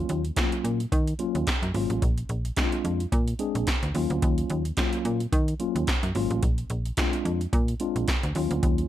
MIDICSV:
0, 0, Header, 1, 4, 480
1, 0, Start_track
1, 0, Tempo, 550459
1, 1763, Time_signature, 4, 2, 24, 8
1, 7744, End_track
2, 0, Start_track
2, 0, Title_t, "Tine electric piano"
2, 0, Program_c, 0, 4
2, 0, Note_on_c, 0, 54, 94
2, 0, Note_on_c, 0, 58, 85
2, 0, Note_on_c, 0, 61, 88
2, 0, Note_on_c, 0, 65, 100
2, 188, Note_off_c, 0, 54, 0
2, 189, Note_off_c, 0, 58, 0
2, 190, Note_off_c, 0, 61, 0
2, 192, Note_off_c, 0, 65, 0
2, 316, Note_on_c, 0, 54, 89
2, 320, Note_on_c, 0, 58, 78
2, 321, Note_on_c, 0, 61, 78
2, 325, Note_on_c, 0, 65, 96
2, 689, Note_off_c, 0, 54, 0
2, 691, Note_off_c, 0, 58, 0
2, 692, Note_off_c, 0, 61, 0
2, 694, Note_off_c, 0, 65, 0
2, 1037, Note_on_c, 0, 54, 87
2, 1040, Note_on_c, 0, 58, 82
2, 1043, Note_on_c, 0, 61, 81
2, 1044, Note_on_c, 0, 65, 98
2, 1277, Note_off_c, 0, 54, 0
2, 1279, Note_off_c, 0, 58, 0
2, 1281, Note_off_c, 0, 61, 0
2, 1281, Note_off_c, 0, 65, 0
2, 1517, Note_on_c, 0, 54, 91
2, 1519, Note_on_c, 0, 58, 80
2, 1521, Note_on_c, 0, 61, 85
2, 1525, Note_on_c, 0, 65, 102
2, 1760, Note_off_c, 0, 54, 0
2, 1761, Note_off_c, 0, 58, 0
2, 1762, Note_off_c, 0, 61, 0
2, 1764, Note_off_c, 0, 65, 0
2, 2238, Note_on_c, 0, 56, 95
2, 2241, Note_on_c, 0, 60, 80
2, 2242, Note_on_c, 0, 62, 80
2, 2245, Note_on_c, 0, 63, 73
2, 2301, Note_on_c, 0, 65, 98
2, 2307, Note_off_c, 0, 63, 0
2, 2610, Note_off_c, 0, 56, 0
2, 2611, Note_off_c, 0, 60, 0
2, 2612, Note_off_c, 0, 62, 0
2, 2642, Note_off_c, 0, 65, 0
2, 2958, Note_on_c, 0, 56, 89
2, 2959, Note_on_c, 0, 60, 83
2, 2962, Note_on_c, 0, 62, 85
2, 2964, Note_on_c, 0, 68, 93
2, 3198, Note_off_c, 0, 56, 0
2, 3199, Note_off_c, 0, 60, 0
2, 3200, Note_off_c, 0, 62, 0
2, 3201, Note_off_c, 0, 68, 0
2, 3438, Note_on_c, 0, 54, 92
2, 3439, Note_on_c, 0, 58, 79
2, 3442, Note_on_c, 0, 61, 86
2, 3445, Note_on_c, 0, 65, 100
2, 4028, Note_off_c, 0, 54, 0
2, 4028, Note_off_c, 0, 58, 0
2, 4030, Note_off_c, 0, 61, 0
2, 4032, Note_off_c, 0, 65, 0
2, 4159, Note_on_c, 0, 54, 89
2, 4161, Note_on_c, 0, 58, 85
2, 4164, Note_on_c, 0, 61, 79
2, 4166, Note_on_c, 0, 65, 103
2, 4531, Note_off_c, 0, 54, 0
2, 4532, Note_off_c, 0, 58, 0
2, 4533, Note_off_c, 0, 61, 0
2, 4534, Note_off_c, 0, 65, 0
2, 4879, Note_on_c, 0, 54, 89
2, 4882, Note_on_c, 0, 58, 84
2, 4884, Note_on_c, 0, 61, 85
2, 4886, Note_on_c, 0, 65, 100
2, 5119, Note_off_c, 0, 54, 0
2, 5120, Note_off_c, 0, 58, 0
2, 5121, Note_off_c, 0, 61, 0
2, 5122, Note_off_c, 0, 65, 0
2, 5360, Note_on_c, 0, 54, 94
2, 5363, Note_on_c, 0, 58, 90
2, 5366, Note_on_c, 0, 61, 89
2, 5368, Note_on_c, 0, 65, 108
2, 5601, Note_off_c, 0, 54, 0
2, 5603, Note_off_c, 0, 58, 0
2, 5605, Note_off_c, 0, 61, 0
2, 5605, Note_off_c, 0, 65, 0
2, 6081, Note_on_c, 0, 56, 93
2, 6083, Note_on_c, 0, 60, 83
2, 6086, Note_on_c, 0, 62, 85
2, 6088, Note_on_c, 0, 65, 107
2, 6452, Note_off_c, 0, 56, 0
2, 6453, Note_off_c, 0, 60, 0
2, 6454, Note_off_c, 0, 62, 0
2, 6455, Note_off_c, 0, 65, 0
2, 6802, Note_on_c, 0, 56, 91
2, 6805, Note_on_c, 0, 60, 83
2, 6808, Note_on_c, 0, 62, 86
2, 6809, Note_on_c, 0, 65, 103
2, 7040, Note_off_c, 0, 56, 0
2, 7041, Note_off_c, 0, 60, 0
2, 7043, Note_off_c, 0, 62, 0
2, 7044, Note_off_c, 0, 65, 0
2, 7280, Note_on_c, 0, 54, 89
2, 7282, Note_on_c, 0, 58, 84
2, 7286, Note_on_c, 0, 61, 86
2, 7288, Note_on_c, 0, 65, 102
2, 7744, Note_off_c, 0, 54, 0
2, 7744, Note_off_c, 0, 58, 0
2, 7744, Note_off_c, 0, 61, 0
2, 7744, Note_off_c, 0, 65, 0
2, 7744, End_track
3, 0, Start_track
3, 0, Title_t, "FM bass"
3, 0, Program_c, 1, 39
3, 83, Note_on_c, 1, 39, 96
3, 272, Note_off_c, 1, 39, 0
3, 561, Note_on_c, 1, 46, 87
3, 751, Note_off_c, 1, 46, 0
3, 803, Note_on_c, 1, 51, 109
3, 993, Note_off_c, 1, 51, 0
3, 1178, Note_on_c, 1, 39, 91
3, 1261, Note_off_c, 1, 39, 0
3, 1416, Note_on_c, 1, 42, 86
3, 1500, Note_off_c, 1, 42, 0
3, 1522, Note_on_c, 1, 32, 95
3, 1628, Note_off_c, 1, 32, 0
3, 1656, Note_on_c, 1, 33, 93
3, 1740, Note_off_c, 1, 33, 0
3, 1764, Note_on_c, 1, 34, 106
3, 1953, Note_off_c, 1, 34, 0
3, 2001, Note_on_c, 1, 34, 95
3, 2192, Note_off_c, 1, 34, 0
3, 2482, Note_on_c, 1, 41, 86
3, 2672, Note_off_c, 1, 41, 0
3, 2723, Note_on_c, 1, 46, 110
3, 2913, Note_off_c, 1, 46, 0
3, 3097, Note_on_c, 1, 34, 94
3, 3181, Note_off_c, 1, 34, 0
3, 3338, Note_on_c, 1, 38, 89
3, 3421, Note_off_c, 1, 38, 0
3, 3443, Note_on_c, 1, 39, 96
3, 3549, Note_off_c, 1, 39, 0
3, 3578, Note_on_c, 1, 38, 96
3, 3661, Note_off_c, 1, 38, 0
3, 3684, Note_on_c, 1, 39, 117
3, 3873, Note_off_c, 1, 39, 0
3, 3925, Note_on_c, 1, 39, 100
3, 4114, Note_off_c, 1, 39, 0
3, 4404, Note_on_c, 1, 46, 94
3, 4594, Note_off_c, 1, 46, 0
3, 4643, Note_on_c, 1, 51, 113
3, 4833, Note_off_c, 1, 51, 0
3, 5018, Note_on_c, 1, 39, 92
3, 5101, Note_off_c, 1, 39, 0
3, 5259, Note_on_c, 1, 42, 86
3, 5342, Note_off_c, 1, 42, 0
3, 5366, Note_on_c, 1, 32, 97
3, 5471, Note_off_c, 1, 32, 0
3, 5499, Note_on_c, 1, 33, 96
3, 5582, Note_off_c, 1, 33, 0
3, 5604, Note_on_c, 1, 34, 102
3, 5793, Note_off_c, 1, 34, 0
3, 5843, Note_on_c, 1, 34, 94
3, 6033, Note_off_c, 1, 34, 0
3, 6324, Note_on_c, 1, 41, 91
3, 6513, Note_off_c, 1, 41, 0
3, 6565, Note_on_c, 1, 46, 115
3, 6754, Note_off_c, 1, 46, 0
3, 6939, Note_on_c, 1, 34, 90
3, 7022, Note_off_c, 1, 34, 0
3, 7180, Note_on_c, 1, 38, 93
3, 7263, Note_off_c, 1, 38, 0
3, 7286, Note_on_c, 1, 39, 102
3, 7391, Note_off_c, 1, 39, 0
3, 7419, Note_on_c, 1, 38, 94
3, 7502, Note_off_c, 1, 38, 0
3, 7525, Note_on_c, 1, 39, 106
3, 7714, Note_off_c, 1, 39, 0
3, 7744, End_track
4, 0, Start_track
4, 0, Title_t, "Drums"
4, 80, Note_on_c, 9, 42, 70
4, 167, Note_off_c, 9, 42, 0
4, 215, Note_on_c, 9, 42, 49
4, 302, Note_off_c, 9, 42, 0
4, 318, Note_on_c, 9, 42, 98
4, 321, Note_on_c, 9, 36, 115
4, 329, Note_on_c, 9, 38, 100
4, 330, Note_on_c, 9, 39, 89
4, 405, Note_off_c, 9, 42, 0
4, 408, Note_off_c, 9, 36, 0
4, 416, Note_off_c, 9, 38, 0
4, 417, Note_off_c, 9, 39, 0
4, 456, Note_on_c, 9, 42, 56
4, 543, Note_off_c, 9, 42, 0
4, 564, Note_on_c, 9, 42, 78
4, 651, Note_off_c, 9, 42, 0
4, 699, Note_on_c, 9, 42, 51
4, 786, Note_off_c, 9, 42, 0
4, 802, Note_on_c, 9, 36, 116
4, 805, Note_on_c, 9, 42, 96
4, 890, Note_off_c, 9, 36, 0
4, 892, Note_off_c, 9, 42, 0
4, 937, Note_on_c, 9, 42, 55
4, 1024, Note_off_c, 9, 42, 0
4, 1037, Note_on_c, 9, 42, 75
4, 1125, Note_off_c, 9, 42, 0
4, 1177, Note_on_c, 9, 42, 54
4, 1264, Note_off_c, 9, 42, 0
4, 1280, Note_on_c, 9, 42, 92
4, 1283, Note_on_c, 9, 36, 109
4, 1291, Note_on_c, 9, 38, 116
4, 1292, Note_on_c, 9, 39, 95
4, 1367, Note_off_c, 9, 42, 0
4, 1370, Note_off_c, 9, 36, 0
4, 1378, Note_off_c, 9, 38, 0
4, 1379, Note_off_c, 9, 39, 0
4, 1419, Note_on_c, 9, 42, 58
4, 1506, Note_off_c, 9, 42, 0
4, 1521, Note_on_c, 9, 46, 67
4, 1608, Note_off_c, 9, 46, 0
4, 1656, Note_on_c, 9, 42, 56
4, 1744, Note_off_c, 9, 42, 0
4, 1763, Note_on_c, 9, 36, 127
4, 1763, Note_on_c, 9, 42, 100
4, 1850, Note_off_c, 9, 36, 0
4, 1851, Note_off_c, 9, 42, 0
4, 1898, Note_on_c, 9, 42, 51
4, 1985, Note_off_c, 9, 42, 0
4, 1999, Note_on_c, 9, 42, 65
4, 2086, Note_off_c, 9, 42, 0
4, 2136, Note_on_c, 9, 42, 50
4, 2223, Note_off_c, 9, 42, 0
4, 2237, Note_on_c, 9, 42, 96
4, 2241, Note_on_c, 9, 36, 108
4, 2248, Note_on_c, 9, 38, 102
4, 2249, Note_on_c, 9, 39, 86
4, 2324, Note_off_c, 9, 42, 0
4, 2328, Note_off_c, 9, 36, 0
4, 2335, Note_off_c, 9, 38, 0
4, 2336, Note_off_c, 9, 39, 0
4, 2375, Note_on_c, 9, 42, 53
4, 2462, Note_off_c, 9, 42, 0
4, 2482, Note_on_c, 9, 42, 78
4, 2570, Note_off_c, 9, 42, 0
4, 2618, Note_on_c, 9, 42, 53
4, 2705, Note_off_c, 9, 42, 0
4, 2722, Note_on_c, 9, 36, 112
4, 2724, Note_on_c, 9, 42, 92
4, 2809, Note_off_c, 9, 36, 0
4, 2811, Note_off_c, 9, 42, 0
4, 2856, Note_on_c, 9, 42, 59
4, 2944, Note_off_c, 9, 42, 0
4, 2957, Note_on_c, 9, 42, 72
4, 3044, Note_off_c, 9, 42, 0
4, 3097, Note_on_c, 9, 42, 56
4, 3184, Note_off_c, 9, 42, 0
4, 3199, Note_on_c, 9, 42, 92
4, 3203, Note_on_c, 9, 36, 109
4, 3209, Note_on_c, 9, 38, 110
4, 3210, Note_on_c, 9, 39, 85
4, 3286, Note_off_c, 9, 42, 0
4, 3290, Note_off_c, 9, 36, 0
4, 3297, Note_off_c, 9, 38, 0
4, 3298, Note_off_c, 9, 39, 0
4, 3338, Note_on_c, 9, 42, 55
4, 3425, Note_off_c, 9, 42, 0
4, 3441, Note_on_c, 9, 46, 71
4, 3528, Note_off_c, 9, 46, 0
4, 3576, Note_on_c, 9, 42, 54
4, 3663, Note_off_c, 9, 42, 0
4, 3683, Note_on_c, 9, 36, 119
4, 3683, Note_on_c, 9, 42, 97
4, 3770, Note_off_c, 9, 36, 0
4, 3770, Note_off_c, 9, 42, 0
4, 3818, Note_on_c, 9, 42, 53
4, 3905, Note_off_c, 9, 42, 0
4, 3921, Note_on_c, 9, 42, 66
4, 4008, Note_off_c, 9, 42, 0
4, 4057, Note_on_c, 9, 42, 53
4, 4144, Note_off_c, 9, 42, 0
4, 4158, Note_on_c, 9, 42, 97
4, 4161, Note_on_c, 9, 36, 110
4, 4169, Note_on_c, 9, 38, 101
4, 4169, Note_on_c, 9, 39, 83
4, 4245, Note_off_c, 9, 42, 0
4, 4248, Note_off_c, 9, 36, 0
4, 4256, Note_off_c, 9, 38, 0
4, 4257, Note_off_c, 9, 39, 0
4, 4296, Note_on_c, 9, 42, 52
4, 4383, Note_off_c, 9, 42, 0
4, 4404, Note_on_c, 9, 42, 81
4, 4491, Note_off_c, 9, 42, 0
4, 4538, Note_on_c, 9, 42, 55
4, 4625, Note_off_c, 9, 42, 0
4, 4643, Note_on_c, 9, 36, 112
4, 4644, Note_on_c, 9, 42, 94
4, 4730, Note_off_c, 9, 36, 0
4, 4732, Note_off_c, 9, 42, 0
4, 4779, Note_on_c, 9, 42, 54
4, 4866, Note_off_c, 9, 42, 0
4, 4880, Note_on_c, 9, 42, 68
4, 4968, Note_off_c, 9, 42, 0
4, 5020, Note_on_c, 9, 42, 59
4, 5107, Note_off_c, 9, 42, 0
4, 5121, Note_on_c, 9, 42, 88
4, 5124, Note_on_c, 9, 36, 125
4, 5131, Note_on_c, 9, 38, 113
4, 5132, Note_on_c, 9, 39, 97
4, 5208, Note_off_c, 9, 42, 0
4, 5211, Note_off_c, 9, 36, 0
4, 5219, Note_off_c, 9, 38, 0
4, 5220, Note_off_c, 9, 39, 0
4, 5259, Note_on_c, 9, 42, 58
4, 5346, Note_off_c, 9, 42, 0
4, 5362, Note_on_c, 9, 46, 68
4, 5450, Note_off_c, 9, 46, 0
4, 5498, Note_on_c, 9, 42, 57
4, 5585, Note_off_c, 9, 42, 0
4, 5603, Note_on_c, 9, 42, 99
4, 5604, Note_on_c, 9, 36, 118
4, 5690, Note_off_c, 9, 42, 0
4, 5691, Note_off_c, 9, 36, 0
4, 5737, Note_on_c, 9, 42, 53
4, 5825, Note_off_c, 9, 42, 0
4, 5840, Note_on_c, 9, 42, 70
4, 5927, Note_off_c, 9, 42, 0
4, 5977, Note_on_c, 9, 42, 50
4, 6064, Note_off_c, 9, 42, 0
4, 6079, Note_on_c, 9, 42, 102
4, 6082, Note_on_c, 9, 36, 119
4, 6090, Note_on_c, 9, 38, 111
4, 6090, Note_on_c, 9, 39, 90
4, 6166, Note_off_c, 9, 42, 0
4, 6169, Note_off_c, 9, 36, 0
4, 6177, Note_off_c, 9, 38, 0
4, 6178, Note_off_c, 9, 39, 0
4, 6218, Note_on_c, 9, 42, 56
4, 6305, Note_off_c, 9, 42, 0
4, 6326, Note_on_c, 9, 42, 71
4, 6413, Note_off_c, 9, 42, 0
4, 6462, Note_on_c, 9, 42, 51
4, 6549, Note_off_c, 9, 42, 0
4, 6564, Note_on_c, 9, 36, 117
4, 6566, Note_on_c, 9, 42, 94
4, 6652, Note_off_c, 9, 36, 0
4, 6653, Note_off_c, 9, 42, 0
4, 6700, Note_on_c, 9, 42, 54
4, 6787, Note_off_c, 9, 42, 0
4, 6799, Note_on_c, 9, 42, 75
4, 6887, Note_off_c, 9, 42, 0
4, 6939, Note_on_c, 9, 42, 53
4, 7027, Note_off_c, 9, 42, 0
4, 7042, Note_on_c, 9, 42, 91
4, 7045, Note_on_c, 9, 36, 117
4, 7053, Note_on_c, 9, 38, 117
4, 7054, Note_on_c, 9, 39, 88
4, 7130, Note_off_c, 9, 42, 0
4, 7132, Note_off_c, 9, 36, 0
4, 7140, Note_off_c, 9, 38, 0
4, 7141, Note_off_c, 9, 39, 0
4, 7180, Note_on_c, 9, 42, 57
4, 7267, Note_off_c, 9, 42, 0
4, 7282, Note_on_c, 9, 46, 71
4, 7369, Note_off_c, 9, 46, 0
4, 7418, Note_on_c, 9, 42, 58
4, 7505, Note_off_c, 9, 42, 0
4, 7524, Note_on_c, 9, 36, 122
4, 7524, Note_on_c, 9, 42, 103
4, 7611, Note_off_c, 9, 36, 0
4, 7612, Note_off_c, 9, 42, 0
4, 7658, Note_on_c, 9, 42, 48
4, 7744, Note_off_c, 9, 42, 0
4, 7744, End_track
0, 0, End_of_file